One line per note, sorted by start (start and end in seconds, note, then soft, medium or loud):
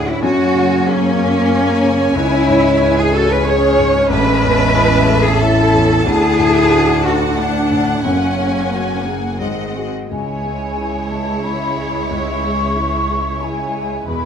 0.00 0.19 D2 medium
0.00 0.20 D2 medium
0.00 0.26 A2 medium
0.00 0.20 A3 medium
0.00 0.11 D4 medium
0.00 0.26 F#4 medium
0.00 0.27 A4 medium
0.00 0.20 D5 medium
0.00 0.19 F#5 medium
0.08 0.23 C#4 medium
0.08 0.24 E4 medium
0.22 2.12 F#2 medium
0.22 2.16 F#2 medium
0.22 2.12 A#3 medium
0.22 0.86 C#4 medium
0.22 0.86 F#4 loud
0.22 4.07 C#5 medium
0.22 4.06 G#5 medium
0.54 1.06 C#3 medium
0.86 2.16 A#3 loud
0.86 2.17 C#4 loud
0.86 1.38 G#4 medium
1.18 1.71 A#4 medium
1.51 2.03 C#4 medium
1.83 2.16 C#3 medium
2.15 4.06 C#2 medium
2.15 4.07 C#2 medium
2.15 6.02 C#4 medium
2.15 2.98 C#4 medium
2.15 2.98 E4 loud
2.48 3.01 G#2 medium
2.81 3.33 E4 medium
2.98 3.14 E4 medium
2.98 3.15 G#4 loud
3.13 3.30 F#4 medium
3.13 3.66 G#4 medium
3.13 3.30 A4 loud
3.30 3.45 G#4 medium
3.30 3.47 B4 loud
3.46 3.98 C#4 medium
3.46 3.94 G#4 loud
3.46 4.11 C#5 loud
3.78 4.10 G#2 medium
4.10 6.01 A1 medium
4.10 6.02 A1 medium
4.10 5.23 G#3 loud
4.10 5.22 B4 loud
4.10 6.02 E5 medium
4.10 8.01 A5 medium
4.43 4.95 E2 medium
4.76 5.28 E4 medium
5.09 5.61 A4 medium
5.26 5.40 E4 medium
5.26 5.41 G#4 loud
5.42 5.93 C#4 medium
5.42 6.05 E4 loud
5.42 6.06 A4 loud
5.74 6.06 E2 medium
6.06 8.05 D2 medium
6.06 8.01 D2 medium
6.06 8.01 D4 medium
6.06 7.03 E4 loud
6.06 7.06 G#4 loud
6.06 9.37 F#5 medium
6.39 6.92 A2 medium
6.71 7.25 F#4 medium
7.04 7.38 D4 medium
7.04 7.38 F#4 medium
7.04 7.58 A4 medium
7.37 8.05 A3 medium
7.37 7.91 D4 medium
7.37 8.05 D4 medium
7.71 8.05 A2 soft
8.04 9.38 F#1 medium
8.04 9.37 F#2 medium
8.04 9.04 A#3 medium
8.04 9.37 A#3 medium
8.04 9.05 C#4 medium
8.04 9.38 G#5 medium
8.39 8.93 C#3 soft
8.73 9.28 F#4 soft
9.07 9.41 F#3 medium
9.07 9.42 A#3 medium
9.07 9.41 G#4 soft
9.41 9.91 G#1 medium
9.41 10.10 G#2 medium
9.41 9.88 G#3 soft
9.41 10.13 G#3 medium
9.41 10.13 C4 medium
9.41 9.88 D#5 medium
9.41 9.88 F#5 soft
9.76 10.08 F#4 soft
9.76 10.09 G#4 soft
10.11 12.06 C#2 soft
10.11 14.04 C#2 medium
10.11 14.04 G#3 soft
10.11 14.04 E4 soft
10.11 14.03 C#5 soft
10.11 11.08 G#5 medium
10.45 10.98 G#3 soft
10.78 11.31 E4 soft
11.11 11.64 G#3 soft
11.11 11.44 A5 medium
11.43 11.97 E4 soft
11.43 12.10 B5 medium
11.77 12.30 G#4 soft
12.10 14.03 C#2 soft
12.10 13.39 C#6 medium
12.44 12.96 G#3 soft
12.76 13.28 E4 soft
13.09 13.62 G#4 soft
13.41 13.94 E4 soft
13.41 14.08 G#5 medium
13.75 14.08 G#4 soft
14.07 14.25 E1 medium
14.07 14.25 E2 medium
14.07 14.25 G#3 medium
14.07 14.25 E4 medium
14.07 14.25 B4 medium
14.07 14.25 B5 medium